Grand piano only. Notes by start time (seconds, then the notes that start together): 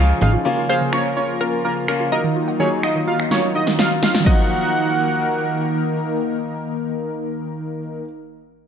Already playing: C#4 D#4
0.00 F4
0.21 C#4 D#4 F4
0.45 A#3 C#4 F4
0.69 A#3 C#4 G#4
0.93 A#3 C#4 F4
1.17 A#3 C#4 F4
1.40 A#3 C#4 F4
1.64 A#3 C#4 F4
1.88 A#3 C#4 F4
2.12 F#3 D#4 F4
2.59 F#3 D#4 G#4
2.83 F#3 D#4 F4
3.07 F#3 D#4 F4
3.31 F#3 D#4 F4
3.55 F#3 D#4 F4
3.79 F#3 D#4 F4
4.02 F#3 D#4 F4
4.24 F#3 D#4
4.28 F3